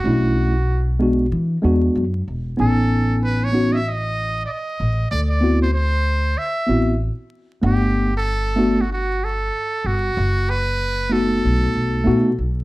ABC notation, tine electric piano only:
X:1
M:4/4
L:1/8
Q:"Swing 16ths" 1/4=95
K:G
V:1 name="Tine electric piano"
[A,^CDE] z2 [^G,B,DF] z [G,B,DF] z2 | [B,^C^D^g]3 [B,CDF] z4 | z [B,CEF] z3 [B,CEF] z2 | [A,B,Df] z2 [A,B,DF] z4 |
z3 [A,B,^DF]3 [A,B,DF] z |]